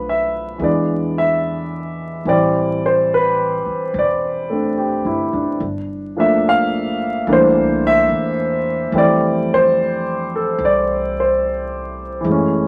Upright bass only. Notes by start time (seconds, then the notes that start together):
Already playing: B1
0.59 E2
2.25 A1
3.66 muted upright bass stroke
3.94 E1
5.05 G1
5.33 F1
5.60 G1
7.27 C2
8.09 E2
8.92 F2
10.59 C2
12.24 F#1